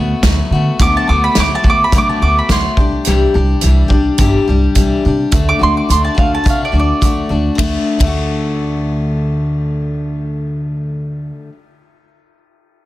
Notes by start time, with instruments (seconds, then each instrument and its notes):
Already playing: upright bass D2, steel-string acoustic guitar A3 B3 F#4, mandolin F#5
0.23 upright bass D2, steel-string acoustic guitar F#3 A3 B3 F#4, kick, snare, closed hi-hat
0.51 upright bass D3, steel-string acoustic guitar B3 F#4
0.55 steel-string acoustic guitar A3
0.79 upright bass D2, steel-string acoustic guitar D3 F#3 A3 B3 F#4, mandolin D6, kick, closed hi-hat
0.97 mandolin A5
1.08 upright bass D2, steel-string acoustic guitar A3 B3 F#4, mandolin D6
1.24 mandolin B5
1.35 upright bass D2, steel-string acoustic guitar F#3 A3 B3 F#4, snare, closed hi-hat
1.40 mandolin D6
1.55 mandolin A5
1.64 upright bass D2, steel-string acoustic guitar A3 B3 F#4, kick
1.70 mandolin D6
1.84 mandolin B5
1.92 upright bass C3, steel-string acoustic guitar D3 F#3 A3 B3 F#4, kick, closed hi-hat
1.98 mandolin D6
2.09 mandolin A5
2.22 upright bass D2, steel-string acoustic guitar A3 B3 F#4, mandolin D6
2.39 mandolin B5
2.49 upright bass D2, steel-string acoustic guitar F#3 A3 B3 F#4, mandolin C6, kick, snare, closed hi-hat
2.77 upright bass C2, steel-string acoustic guitar G3 D4 G4, kick
3.05 upright bass C2, steel-string acoustic guitar C3 E3 G3 D4 G4, closed hi-hat
3.34 upright bass C2, steel-string acoustic guitar G3 D4 G4
3.61 upright bass C2, steel-string acoustic guitar E3 G3 D4 G4, closed hi-hat
3.88 upright bass C2, steel-string acoustic guitar D4 G4, kick
3.92 steel-string acoustic guitar G3
4.18 upright bass G1, steel-string acoustic guitar C3 E3 G3 D4 G4, kick, closed hi-hat
4.48 upright bass C2, steel-string acoustic guitar G3 D4 G4
4.75 upright bass C2, steel-string acoustic guitar E3 G3 D4 G4, kick, closed hi-hat
5.05 upright bass C3, steel-string acoustic guitar G3 D4 G4
5.31 upright bass D2, steel-string acoustic guitar D3 A3 D4 F#4, kick, closed hi-hat
5.49 mandolin D6
5.59 upright bass D2, steel-string acoustic guitar A3 D4 F#4
5.63 mandolin C6
5.77 mandolin D6
5.89 upright bass D2, steel-string acoustic guitar D3 A3 D4 F#4, mandolin C6, closed hi-hat
6.05 mandolin A5
6.15 upright bass D2, steel-string acoustic guitar A3 D4 F#4, kick
6.19 mandolin F5
6.35 mandolin A5
6.44 upright bass C3, steel-string acoustic guitar D3 A3 D4 F#4, kick, closed hi-hat
6.49 mandolin F5
6.65 mandolin D5
6.72 upright bass D2, steel-string acoustic guitar A3 D4 F#4
6.79 mandolin D5
7.01 upright bass D2, steel-string acoustic guitar D3 A3 D4 F#4, kick, closed hi-hat
7.29 upright bass D2, steel-string acoustic guitar A3 D4 F#4
7.55 upright bass D2, steel-string acoustic guitar D3 A3, kick, ride
7.61 steel-string acoustic guitar D4 F#4
7.99 upright bass D2, steel-string acoustic guitar D3 A3, kick, ride
8.04 steel-string acoustic guitar D4 F#4